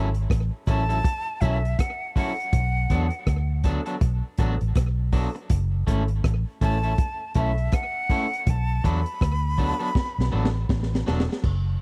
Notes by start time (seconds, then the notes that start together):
Already playing: G#1
0.14 closed hi-hat
0.30 A1, kick, cross-stick, closed hi-hat
0.67 A1 F#3 C#4 E4 A4 A5, kick, closed hi-hat
0.89 F#3 C#4 E4 A4, closed hi-hat
1.04 kick, closed hi-hat
1.41 B1 F#3 C#4 E4 A4 E5, kick, closed hi-hat
1.65 closed hi-hat
1.79 F#5, kick, cross-stick, closed hi-hat
2.16 F#3 C#4 E4 A4 F#5, kick, open hi-hat
2.40 closed hi-hat
2.53 B1, kick, closed hi-hat
2.90 E2 F#3 B3 D4 A4, kick, closed hi-hat
3.10 closed hi-hat
3.27 D2, kick, cross-stick, closed hi-hat
3.64 F#3 B3 D4 A4, kick, closed hi-hat
3.86 F#3 B3 D4 A4, closed hi-hat
4.01 B1, kick, closed hi-hat
4.38 A1 F#3 B3 D4 A4, kick, closed hi-hat
4.61 A1, closed hi-hat
4.75 B1, kick, cross-stick, closed hi-hat
5.12 F#3 B3 D4 A4, kick, open hi-hat
5.35 muted clean electric guitar stroke, closed hi-hat
5.50 F#1, kick, closed hi-hat
5.87 G#1 A3 C#4 E4 A4, kick, closed hi-hat
6.08 closed hi-hat
6.24 A1, kick, cross-stick, closed hi-hat
6.61 A1 A3 C#4 E4 A4 A5, kick, closed hi-hat
6.83 A3 C#4 E4 A4, closed hi-hat
6.98 kick, closed hi-hat
7.34 B1 A3 C#4 E4 A4 E5, kick, closed hi-hat
7.58 closed hi-hat
7.72 F#5, kick, cross-stick, closed hi-hat
8.09 A3 C#4 E4 A4, kick, open hi-hat
8.33 closed hi-hat
8.47 B1 A5, kick, closed hi-hat
8.84 E2 F#3 B3 D4 A4 B5, kick, closed hi-hat
9.06 closed hi-hat
9.21 D2, kick, cross-stick, closed hi-hat
9.58 F#3 B3 D4 A4, kick, open hi-hat
9.79 F#3 B3 D4 A4, closed hi-hat
9.95 kick, snare
10.18 B1, snare
10.32 A1 F#3 B3 D4 A4
10.45 snare
10.69 A1, kick, snare
10.83 snare
10.95 snare
11.06 E1 F#3 B3 D4 A4, snare
11.20 snare
11.29 muted clean electric guitar stroke, snare
11.44 F#1, kick, crash